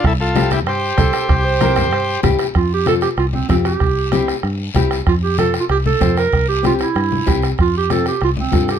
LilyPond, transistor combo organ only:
\new Staff \with { instrumentName = "Transistor combo organ" } { \time 4/4 \key f \major \tempo 4 = 191 <e' a'>8 <f' a'>4 <e' g'>8 <g' c''>2~ | <g' c''>2. r4 | r1 | r1 |
r1 | r1 | r1 | }